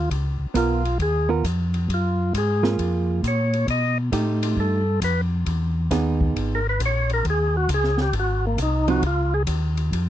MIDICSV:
0, 0, Header, 1, 5, 480
1, 0, Start_track
1, 0, Key_signature, -5, "major"
1, 0, Tempo, 446097
1, 118, Time_signature, 4, 2, 24, 8
1, 10857, End_track
2, 0, Start_track
2, 0, Title_t, "Tonewheel organ"
2, 0, Program_c, 0, 16
2, 617, Note_on_c, 0, 65, 73
2, 1055, Note_off_c, 0, 65, 0
2, 1099, Note_on_c, 0, 68, 89
2, 1398, Note_off_c, 0, 68, 0
2, 2087, Note_on_c, 0, 65, 60
2, 2511, Note_off_c, 0, 65, 0
2, 2557, Note_on_c, 0, 68, 75
2, 2848, Note_off_c, 0, 68, 0
2, 3525, Note_on_c, 0, 73, 90
2, 3950, Note_off_c, 0, 73, 0
2, 3986, Note_on_c, 0, 75, 92
2, 4282, Note_off_c, 0, 75, 0
2, 4949, Note_on_c, 0, 69, 73
2, 5381, Note_off_c, 0, 69, 0
2, 5427, Note_on_c, 0, 71, 80
2, 5610, Note_off_c, 0, 71, 0
2, 7048, Note_on_c, 0, 70, 83
2, 7179, Note_off_c, 0, 70, 0
2, 7201, Note_on_c, 0, 71, 94
2, 7335, Note_off_c, 0, 71, 0
2, 7377, Note_on_c, 0, 73, 91
2, 7658, Note_off_c, 0, 73, 0
2, 7678, Note_on_c, 0, 70, 87
2, 7814, Note_off_c, 0, 70, 0
2, 7854, Note_on_c, 0, 68, 86
2, 8136, Note_off_c, 0, 68, 0
2, 8145, Note_on_c, 0, 66, 88
2, 8287, Note_off_c, 0, 66, 0
2, 8331, Note_on_c, 0, 68, 99
2, 8615, Note_off_c, 0, 68, 0
2, 8624, Note_on_c, 0, 67, 77
2, 8767, Note_off_c, 0, 67, 0
2, 8816, Note_on_c, 0, 66, 77
2, 9098, Note_off_c, 0, 66, 0
2, 9110, Note_on_c, 0, 58, 60
2, 9250, Note_off_c, 0, 58, 0
2, 9279, Note_on_c, 0, 63, 77
2, 9569, Note_off_c, 0, 63, 0
2, 9580, Note_on_c, 0, 66, 103
2, 9725, Note_off_c, 0, 66, 0
2, 9755, Note_on_c, 0, 65, 76
2, 10047, Note_off_c, 0, 65, 0
2, 10051, Note_on_c, 0, 68, 97
2, 10143, Note_off_c, 0, 68, 0
2, 10857, End_track
3, 0, Start_track
3, 0, Title_t, "Hollow-body jazz guitar"
3, 0, Program_c, 1, 26
3, 584, Note_on_c, 1, 59, 58
3, 598, Note_on_c, 1, 65, 57
3, 603, Note_on_c, 1, 70, 67
3, 878, Note_off_c, 1, 59, 0
3, 886, Note_off_c, 1, 65, 0
3, 888, Note_off_c, 1, 70, 0
3, 1387, Note_on_c, 1, 59, 59
3, 1392, Note_on_c, 1, 65, 61
3, 1400, Note_on_c, 1, 70, 69
3, 1537, Note_off_c, 1, 59, 0
3, 1540, Note_off_c, 1, 65, 0
3, 1543, Note_off_c, 1, 70, 0
3, 2831, Note_on_c, 1, 65, 62
3, 2832, Note_on_c, 1, 58, 68
3, 2841, Note_on_c, 1, 68, 72
3, 3443, Note_off_c, 1, 58, 0
3, 3443, Note_off_c, 1, 65, 0
3, 3448, Note_off_c, 1, 68, 0
3, 4436, Note_on_c, 1, 57, 50
3, 4445, Note_on_c, 1, 63, 57
3, 4447, Note_on_c, 1, 67, 66
3, 5172, Note_off_c, 1, 57, 0
3, 5177, Note_off_c, 1, 63, 0
3, 5178, Note_off_c, 1, 67, 0
3, 6359, Note_on_c, 1, 59, 60
3, 6362, Note_on_c, 1, 63, 61
3, 6367, Note_on_c, 1, 68, 59
3, 7093, Note_off_c, 1, 59, 0
3, 7095, Note_off_c, 1, 63, 0
3, 7098, Note_off_c, 1, 68, 0
3, 9554, Note_on_c, 1, 53, 65
3, 9557, Note_on_c, 1, 60, 72
3, 9563, Note_on_c, 1, 63, 79
3, 9701, Note_off_c, 1, 53, 0
3, 9702, Note_off_c, 1, 60, 0
3, 9705, Note_off_c, 1, 63, 0
3, 10857, End_track
4, 0, Start_track
4, 0, Title_t, "Tonewheel organ"
4, 0, Program_c, 2, 16
4, 111, Note_on_c, 2, 37, 77
4, 405, Note_off_c, 2, 37, 0
4, 418, Note_on_c, 2, 37, 35
4, 503, Note_off_c, 2, 37, 0
4, 587, Note_on_c, 2, 35, 87
4, 1058, Note_off_c, 2, 35, 0
4, 1066, Note_on_c, 2, 39, 75
4, 1537, Note_off_c, 2, 39, 0
4, 1550, Note_on_c, 2, 41, 90
4, 2019, Note_off_c, 2, 41, 0
4, 2029, Note_on_c, 2, 42, 79
4, 2499, Note_off_c, 2, 42, 0
4, 2510, Note_on_c, 2, 44, 88
4, 2979, Note_off_c, 2, 44, 0
4, 2991, Note_on_c, 2, 41, 82
4, 3460, Note_off_c, 2, 41, 0
4, 3468, Note_on_c, 2, 46, 83
4, 3938, Note_off_c, 2, 46, 0
4, 3953, Note_on_c, 2, 47, 76
4, 4421, Note_off_c, 2, 47, 0
4, 4434, Note_on_c, 2, 45, 83
4, 4901, Note_off_c, 2, 45, 0
4, 4913, Note_on_c, 2, 43, 78
4, 5381, Note_off_c, 2, 43, 0
4, 5396, Note_on_c, 2, 41, 82
4, 5863, Note_off_c, 2, 41, 0
4, 5874, Note_on_c, 2, 40, 80
4, 6341, Note_off_c, 2, 40, 0
4, 6355, Note_on_c, 2, 39, 84
4, 6822, Note_off_c, 2, 39, 0
4, 6842, Note_on_c, 2, 32, 80
4, 7306, Note_off_c, 2, 32, 0
4, 7312, Note_on_c, 2, 34, 84
4, 7780, Note_off_c, 2, 34, 0
4, 7794, Note_on_c, 2, 39, 80
4, 8262, Note_off_c, 2, 39, 0
4, 8273, Note_on_c, 2, 37, 83
4, 8741, Note_off_c, 2, 37, 0
4, 8753, Note_on_c, 2, 32, 83
4, 9221, Note_off_c, 2, 32, 0
4, 9229, Note_on_c, 2, 36, 94
4, 9699, Note_off_c, 2, 36, 0
4, 9709, Note_on_c, 2, 37, 86
4, 10179, Note_off_c, 2, 37, 0
4, 10191, Note_on_c, 2, 39, 86
4, 10660, Note_off_c, 2, 39, 0
4, 10676, Note_on_c, 2, 41, 88
4, 10857, Note_off_c, 2, 41, 0
4, 10857, End_track
5, 0, Start_track
5, 0, Title_t, "Drums"
5, 112, Note_on_c, 9, 36, 24
5, 120, Note_on_c, 9, 51, 61
5, 219, Note_off_c, 9, 36, 0
5, 227, Note_off_c, 9, 51, 0
5, 590, Note_on_c, 9, 36, 21
5, 594, Note_on_c, 9, 44, 57
5, 594, Note_on_c, 9, 51, 70
5, 698, Note_off_c, 9, 36, 0
5, 701, Note_off_c, 9, 44, 0
5, 701, Note_off_c, 9, 51, 0
5, 917, Note_on_c, 9, 51, 49
5, 1024, Note_off_c, 9, 51, 0
5, 1070, Note_on_c, 9, 36, 21
5, 1072, Note_on_c, 9, 51, 56
5, 1178, Note_off_c, 9, 36, 0
5, 1179, Note_off_c, 9, 51, 0
5, 1550, Note_on_c, 9, 36, 28
5, 1555, Note_on_c, 9, 44, 56
5, 1555, Note_on_c, 9, 51, 64
5, 1657, Note_off_c, 9, 36, 0
5, 1663, Note_off_c, 9, 44, 0
5, 1663, Note_off_c, 9, 51, 0
5, 1870, Note_on_c, 9, 51, 45
5, 1978, Note_off_c, 9, 51, 0
5, 2033, Note_on_c, 9, 36, 18
5, 2042, Note_on_c, 9, 51, 58
5, 2141, Note_off_c, 9, 36, 0
5, 2150, Note_off_c, 9, 51, 0
5, 2515, Note_on_c, 9, 36, 19
5, 2523, Note_on_c, 9, 44, 61
5, 2523, Note_on_c, 9, 51, 75
5, 2623, Note_off_c, 9, 36, 0
5, 2631, Note_off_c, 9, 44, 0
5, 2631, Note_off_c, 9, 51, 0
5, 2838, Note_on_c, 9, 38, 58
5, 2946, Note_off_c, 9, 38, 0
5, 2995, Note_on_c, 9, 36, 22
5, 3001, Note_on_c, 9, 51, 62
5, 3102, Note_off_c, 9, 36, 0
5, 3108, Note_off_c, 9, 51, 0
5, 3475, Note_on_c, 9, 36, 27
5, 3485, Note_on_c, 9, 44, 55
5, 3485, Note_on_c, 9, 51, 64
5, 3583, Note_off_c, 9, 36, 0
5, 3593, Note_off_c, 9, 44, 0
5, 3593, Note_off_c, 9, 51, 0
5, 3802, Note_on_c, 9, 51, 44
5, 3910, Note_off_c, 9, 51, 0
5, 3956, Note_on_c, 9, 36, 23
5, 3959, Note_on_c, 9, 51, 62
5, 4064, Note_off_c, 9, 36, 0
5, 4067, Note_off_c, 9, 51, 0
5, 4436, Note_on_c, 9, 36, 25
5, 4439, Note_on_c, 9, 44, 53
5, 4439, Note_on_c, 9, 51, 72
5, 4544, Note_off_c, 9, 36, 0
5, 4547, Note_off_c, 9, 44, 0
5, 4547, Note_off_c, 9, 51, 0
5, 4762, Note_on_c, 9, 51, 74
5, 4870, Note_off_c, 9, 51, 0
5, 4917, Note_on_c, 9, 36, 24
5, 5025, Note_off_c, 9, 36, 0
5, 5397, Note_on_c, 9, 36, 19
5, 5398, Note_on_c, 9, 44, 50
5, 5398, Note_on_c, 9, 51, 72
5, 5505, Note_off_c, 9, 36, 0
5, 5505, Note_off_c, 9, 44, 0
5, 5505, Note_off_c, 9, 51, 0
5, 5878, Note_on_c, 9, 36, 20
5, 5878, Note_on_c, 9, 51, 61
5, 5985, Note_off_c, 9, 36, 0
5, 5985, Note_off_c, 9, 51, 0
5, 6356, Note_on_c, 9, 38, 43
5, 6359, Note_on_c, 9, 44, 51
5, 6359, Note_on_c, 9, 51, 70
5, 6360, Note_on_c, 9, 36, 21
5, 6464, Note_off_c, 9, 38, 0
5, 6466, Note_off_c, 9, 44, 0
5, 6466, Note_off_c, 9, 51, 0
5, 6467, Note_off_c, 9, 36, 0
5, 6680, Note_on_c, 9, 36, 57
5, 6788, Note_off_c, 9, 36, 0
5, 6842, Note_on_c, 9, 36, 21
5, 6847, Note_on_c, 9, 51, 59
5, 6950, Note_off_c, 9, 36, 0
5, 6955, Note_off_c, 9, 51, 0
5, 7318, Note_on_c, 9, 44, 64
5, 7318, Note_on_c, 9, 51, 65
5, 7319, Note_on_c, 9, 36, 19
5, 7425, Note_off_c, 9, 44, 0
5, 7425, Note_off_c, 9, 51, 0
5, 7427, Note_off_c, 9, 36, 0
5, 7634, Note_on_c, 9, 51, 50
5, 7741, Note_off_c, 9, 51, 0
5, 7798, Note_on_c, 9, 51, 51
5, 7800, Note_on_c, 9, 36, 24
5, 7906, Note_off_c, 9, 51, 0
5, 7907, Note_off_c, 9, 36, 0
5, 8274, Note_on_c, 9, 44, 65
5, 8274, Note_on_c, 9, 51, 71
5, 8276, Note_on_c, 9, 36, 21
5, 8381, Note_off_c, 9, 44, 0
5, 8381, Note_off_c, 9, 51, 0
5, 8384, Note_off_c, 9, 36, 0
5, 8434, Note_on_c, 9, 38, 30
5, 8542, Note_off_c, 9, 38, 0
5, 8581, Note_on_c, 9, 38, 45
5, 8689, Note_off_c, 9, 38, 0
5, 8749, Note_on_c, 9, 51, 62
5, 8751, Note_on_c, 9, 36, 19
5, 8857, Note_off_c, 9, 51, 0
5, 8859, Note_off_c, 9, 36, 0
5, 9232, Note_on_c, 9, 36, 23
5, 9232, Note_on_c, 9, 44, 63
5, 9232, Note_on_c, 9, 51, 66
5, 9340, Note_off_c, 9, 36, 0
5, 9340, Note_off_c, 9, 44, 0
5, 9340, Note_off_c, 9, 51, 0
5, 9551, Note_on_c, 9, 51, 48
5, 9659, Note_off_c, 9, 51, 0
5, 9712, Note_on_c, 9, 36, 21
5, 9713, Note_on_c, 9, 51, 59
5, 9820, Note_off_c, 9, 36, 0
5, 9820, Note_off_c, 9, 51, 0
5, 10187, Note_on_c, 9, 44, 58
5, 10187, Note_on_c, 9, 51, 78
5, 10193, Note_on_c, 9, 36, 23
5, 10295, Note_off_c, 9, 44, 0
5, 10295, Note_off_c, 9, 51, 0
5, 10301, Note_off_c, 9, 36, 0
5, 10515, Note_on_c, 9, 51, 49
5, 10623, Note_off_c, 9, 51, 0
5, 10678, Note_on_c, 9, 36, 20
5, 10685, Note_on_c, 9, 51, 64
5, 10785, Note_off_c, 9, 36, 0
5, 10792, Note_off_c, 9, 51, 0
5, 10857, End_track
0, 0, End_of_file